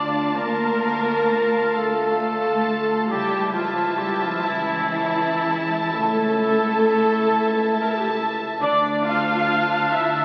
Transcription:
0.00 0.19 D2 medium
0.00 0.35 D3 medium
0.00 0.11 A3 soft
0.00 0.33 D4 medium
0.00 0.36 D4 medium
0.00 0.58 D4 soft
0.00 1.04 F4 soft
0.00 3.12 F4 medium
0.00 1.27 A4 soft
0.00 0.36 D5 medium
0.00 0.37 D5 medium
0.00 0.79 F5 medium
0.00 1.74 F5 soft
0.00 0.79 A5 medium
0.00 1.97 A5 medium
0.00 3.06 A5 medium
0.13 0.82 A3 soft
0.35 1.58 D2 medium
0.35 3.14 D3 medium
0.35 1.75 A#3 medium
0.35 1.77 A#4 medium
0.35 1.75 A#4 medium
0.60 3.14 D4 medium
0.81 2.88 A3 medium
0.81 2.19 F5 medium
0.81 2.19 A5 medium
1.05 1.50 F4 soft
1.28 2.44 A4 soft
1.52 2.66 F4 medium
1.74 2.95 D2 medium
1.74 3.08 A3 medium
1.74 3.11 A3 medium
1.74 3.13 A4 medium
1.74 3.11 A4 medium
1.74 2.20 F5 soft
1.99 4.67 A5 medium
2.20 3.09 F5 medium
2.20 3.14 F5 medium
2.20 3.09 A5 medium
2.45 3.97 A4 medium
2.67 3.14 F4 medium
2.90 3.52 A3 soft
3.10 4.28 C#2 medium
3.10 5.91 C#3 medium
3.10 3.53 G3 medium
3.10 8.45 E4 medium
3.10 3.53 G4 medium
3.10 3.54 G4 medium
3.10 3.53 E5 medium
3.10 8.29 A5 medium
3.10 3.53 A5 medium
3.31 6.15 C#4 medium
3.53 3.99 F3 medium
3.53 3.98 F3 medium
3.53 5.68 A3 medium
3.53 3.98 F4 medium
3.53 4.00 F4 medium
3.53 4.91 E5 medium
3.53 4.91 A5 medium
3.76 4.21 E4 medium
3.98 4.21 G3 medium
3.98 4.22 G3 medium
3.98 4.21 G4 medium
3.98 4.23 G4 medium
4.22 4.45 F3 medium
4.22 5.43 E4 medium
4.22 4.46 F4 medium
4.44 5.76 C#2 medium
4.44 5.92 E3 medium
4.44 5.94 E3 medium
4.44 5.90 E4 loud
4.44 5.64 E4 medium
4.44 4.92 E5 medium
4.68 7.49 A5 medium
4.93 7.26 E5 medium
4.93 6.36 E5 medium
4.93 6.36 A5 medium
4.93 6.37 A5 medium
5.18 6.82 A4 medium
5.44 6.59 E4 medium
5.69 6.38 A3 soft
5.93 7.13 C#2 medium
5.93 8.64 C#3 medium
5.93 8.17 A3 medium
5.93 8.18 A3 medium
5.93 7.82 A4 loud
5.93 8.13 A4 medium
6.39 8.38 A3 medium
6.39 7.71 E5 medium
6.39 7.70 A5 medium
6.39 7.71 A5 medium
6.60 7.04 E4 medium
7.06 8.16 E4 medium
7.27 8.46 C#2 medium
7.27 7.71 E5 medium
7.50 9.92 A5 medium
7.73 8.64 E5 medium
7.73 8.60 E5 medium
7.73 8.60 A5 medium
7.83 7.91 A#4 medium
7.92 8.00 A4 medium
7.92 9.26 A4 medium
7.98 8.08 G4 medium
8.09 8.17 A4 medium
8.17 8.65 E4 medium
8.39 8.82 A3 medium
8.60 9.78 D2 medium
8.60 10.25 D3 medium
8.60 9.02 D4 medium
8.60 10.25 D4 medium
8.60 9.02 D5 loud
8.60 9.03 D5 loud
8.60 10.25 A5 medium
8.83 10.25 A3 medium
9.04 9.48 D4 medium
9.04 9.93 F4 medium
9.04 9.94 F4 medium
9.04 9.95 F5 medium
9.04 10.25 F5 medium
9.04 9.93 F5 loud
9.04 10.25 A5 medium
9.27 10.25 A4 medium
9.50 10.25 D4 medium
9.71 10.15 D5 medium
9.93 10.25 D2 medium
9.93 10.25 E4 medium
9.93 10.25 E5 medium
9.93 10.25 A5 medium
10.16 10.25 D5 medium

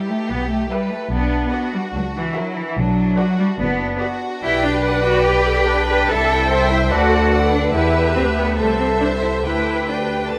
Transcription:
0.00 0.19 G4 soft
0.00 0.70 G4 soft
0.00 0.19 B4 soft
0.00 0.18 E5 soft
0.09 0.30 A3 medium
0.30 0.62 B1 soft
0.30 0.50 B3 medium
0.50 0.70 A3 medium
0.70 0.91 G3 medium
0.70 1.01 G4 soft
0.70 1.11 B4 soft
0.70 1.01 B4 soft
0.70 1.01 E5 soft
0.91 1.12 A3 soft
1.11 1.44 B1 medium
1.11 1.72 B3 medium
1.11 1.53 D4 soft
1.52 2.34 F#4 soft
1.52 1.84 F#4 soft
1.52 1.84 B4 soft
1.52 1.84 D5 soft
1.74 1.82 G3 medium
1.94 2.27 C#2 medium
1.94 2.03 F#3 medium
2.16 2.36 E3 medium
2.35 2.57 F#3 medium
2.35 2.77 E4 soft
2.35 2.66 F#4 soft
2.35 2.66 A#4 soft
2.35 2.66 E5 medium
2.57 2.77 E3 medium
2.77 3.10 B1 medium
2.77 3.39 F#3 medium
2.77 3.18 D4 medium
3.17 3.48 F#4 soft
3.17 3.59 F#4 soft
3.17 3.48 B4 soft
3.17 3.49 D5 soft
3.39 3.47 G3 medium
3.59 3.92 F#1 medium
3.59 4.00 B3 medium
3.59 4.00 D4 soft
4.01 4.32 F#4 soft
4.01 4.42 F#4 medium
4.01 4.32 B4 medium
4.01 4.32 D5 medium
4.41 6.03 B1 medium
4.41 4.61 E4 medium
4.41 4.83 G4 medium
4.41 5.20 B4 medium
4.41 6.03 D5 medium
4.41 4.81 G5 soft
4.63 5.04 D4 medium
4.83 5.66 B4 medium
4.83 5.03 F#5 medium
5.04 5.24 F#4 medium
5.04 6.07 G5 medium
5.24 5.86 G4 medium
5.24 5.45 G4 medium
5.44 5.65 A4 medium
5.66 6.07 D4 medium
5.66 5.87 B4 medium
5.86 6.07 G4 medium
5.86 6.07 B4 medium
6.07 6.89 C2 medium
6.07 6.50 E4 medium
6.07 6.49 A4 medium
6.07 6.70 A4 medium
6.07 6.47 E5 soft
6.07 6.28 A5 medium
6.28 6.90 G5 soft
6.48 6.68 C5 soft
6.48 6.91 C5 medium
6.48 6.89 E5 soft
6.69 6.78 E4 medium
6.69 6.90 C5 medium
6.90 7.74 D2 medium
6.90 7.51 F#4 medium
6.90 7.32 A4 soft
6.90 7.11 B4 soft
6.90 7.30 D5 soft
6.90 7.31 F#5 soft
7.11 7.30 A4 medium
7.32 7.72 A4 soft
7.32 8.58 B4 medium
7.32 7.72 D5 soft
7.32 7.72 F#5 medium
7.53 7.73 D4 medium
7.74 8.13 E2 medium
7.74 8.15 E4 medium
7.74 8.54 G4 soft
7.74 8.54 B4 medium
7.74 8.54 E5 soft
8.15 8.57 D2 soft
8.15 8.23 C4 medium
8.37 8.57 B3 medium
8.58 9.44 C2 soft
8.58 8.78 A3 medium
8.58 9.00 A4 soft
8.58 9.44 A4 soft
8.58 9.44 C5 soft
8.58 9.42 E5 soft
8.79 8.87 C4 medium
9.01 9.09 D4 medium
9.01 9.44 C5 soft
9.22 9.30 E4 soft
9.44 10.32 D2 soft
9.44 9.88 E4 medium
9.44 9.87 G4 soft
9.44 9.87 B4 soft
9.44 10.39 B4 soft
9.44 9.86 G5 soft
9.87 10.39 D4 soft
9.87 10.32 G4 soft
9.87 10.32 B4 soft
9.87 10.31 G5 soft
10.31 10.39 D2 soft
10.31 10.39 F#4 soft
10.31 10.39 A4 soft
10.31 10.39 A5 soft

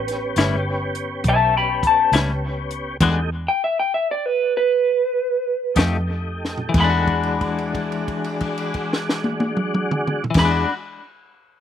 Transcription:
0.00 0.34 A1 medium
0.00 2.97 B3 medium
0.00 2.97 C#4 medium
0.00 2.97 G4 medium
0.00 0.65 B4 medium
0.08 snare soft
0.08 closed hi-hat medium
0.36 1.22 G1 medium
0.36 0.56 A2 medium
0.36 0.55 G3 medium
0.36 0.55 C#4 medium
0.36 0.55 E4 medium
0.36 snare medium
0.36 closed hi-hat medium
0.95 closed hi-hat soft
1.24 2.09 B1 medium
1.24 kick medium
1.24 closed hi-hat medium
1.28 1.56 E5 medium
1.28 1.55 A5 medium
1.57 1.83 G5 medium
1.57 1.84 B5 medium
1.83 kick medium
1.83 closed hi-hat medium
1.87 2.13 A5 medium
2.12 2.98 C#2 medium
2.12 2.31 A2 soft
2.12 2.31 G3 soft
2.12 2.31 C#4 medium
2.12 2.30 E4 medium
2.12 snare medium
2.12 closed hi-hat medium
2.71 closed hi-hat soft
3.00 3.47 E2 medium
3.00 3.19 E3 medium
3.00 3.19 G#3 medium
3.00 3.30 A3 medium
3.00 3.19 D4 medium
3.00 3.30 D#4 medium
3.00 3.19 F#4 medium
3.00 3.30 G4 medium
3.00 kick medium
3.00 closed hi-hat medium
3.00 crash medium
3.48 3.61 G5 medium
3.64 3.77 E5 medium
3.79 3.92 G5 medium
3.94 4.07 E5 medium
4.11 4.26 D5 medium
4.26 4.53 B4 medium
4.57 5.76 B4 medium
5.74 6.72 F2 medium
5.74 6.73 A3 medium
5.74 5.97 A3 soft
5.74 6.73 D#4 medium
5.74 5.96 D#4 medium
5.74 6.73 G4 medium
5.74 5.96 G4 soft
5.74 kick medium
5.74 closed hi-hat medium
5.78 5.97 F3 soft
5.78 snare medium
6.45 snare soft
6.58 floor tom medium
6.69 10.25 E3 medium
6.74 10.24 E2 medium
6.74 7.08 A3 medium
6.74 7.08 D#4 medium
6.74 7.08 G4 medium
6.74 kick medium
6.74 crash medium
6.78 10.29 G#3 medium
6.78 10.27 B5 medium
6.84 10.34 D4 medium
6.90 10.41 F#4 medium
7.06 10.24 G#3 medium
7.06 10.24 D4 medium
7.06 10.24 F#4 medium
7.06 kick medium
7.06 crash soft
7.23 crash soft
7.41 kick medium
7.41 crash soft
7.58 crash soft
7.75 kick medium
7.75 crash soft
7.92 crash soft
8.08 kick soft
8.08 crash soft
8.24 crash soft
8.40 kick medium
8.40 crash soft
8.58 crash soft
8.74 kick medium
8.74 crash soft
8.93 snare medium
9.09 snare medium
9.24 high tom medium
9.40 high tom medium
9.57 mid tom medium
9.75 mid tom medium
9.91 mid tom medium
10.07 mid tom medium
10.24 floor tom medium
10.31 10.63 E3 medium
10.31 crash medium
10.35 10.64 E2 medium
10.35 10.67 G#3 medium
10.35 10.66 D4 medium
10.35 10.67 F#4 soft
10.35 10.67 B5 medium
10.35 kick medium
10.35 snare medium
10.45 10.71 D4 medium
10.51 10.74 F#4 medium

